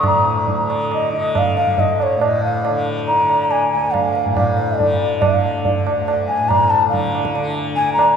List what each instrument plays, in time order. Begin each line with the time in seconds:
Already playing: tanpura D2 D3
0.03 tanpura A2, bansuri A#5, tabla na, tabla ge
0.47 tabla tin, tabla ge
0.60 tanpura D3
0.70 tabla na
0.91 bansuri D#5, tabla na
1.12 tanpura D3, bansuri D#5
1.35 bansuri F5, tabla na, tabla ge
1.57 bansuri F5, tabla te
1.63 tanpura D2, tabla ge
1.78 bansuri D#5, tabla tin, tabla ge
2.00 bansuri C#5, tabla na
2.17 tanpura A2
2.21 bansuri D#5, tabla na
2.45 bansuri F5
2.65 tabla na
2.70 tanpura D3
3.08 bansuri A#5, tabla tin
3.22 tanpura D3
3.29 tabla na
3.51 bansuri G#5, tabla na
3.73 tanpura D2, bansuri G#5
3.93 bansuri F5, tabla na, tabla ge
4.15 tabla te
4.25 tanpura A2, tabla ge
4.37 bansuri F5, tabla na, tabla ge
4.58 tabla te
4.78 tanpura D3, bansuri D5, tabla tin, tabla ge
5.22 bansuri F5, tabla na, tabla ge
5.30 tanpura D3
5.65 tabla tin, tabla ge
5.84 tanpura D2, tabla na
6.08 tabla na
6.28 bansuri G#5
6.37 tanpura A2
6.49 bansuri A#5, tabla na, tabla ge
6.70 bansuri A5
6.88 tanpura D3, bansuri F5
6.93 tabla tin, tabla ge
7.15 tabla na
7.25 tabla ke
7.35 tanpura D3, tabla na
7.76 bansuri G#5, tabla te
7.91 tanpura D2, bansuri A#5
7.99 tabla na